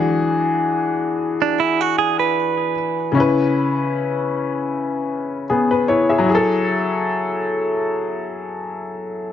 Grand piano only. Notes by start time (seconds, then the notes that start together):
Already playing: E3 D4 F#4 G#4
3.12 C#3 C#4
3.17 E4 B4
5.50 B3 G#4
5.71 B4
5.88 E4 C#5
6.09 G#4 E5
6.18 F#3
6.24 E4
6.29 G#4
6.35 A4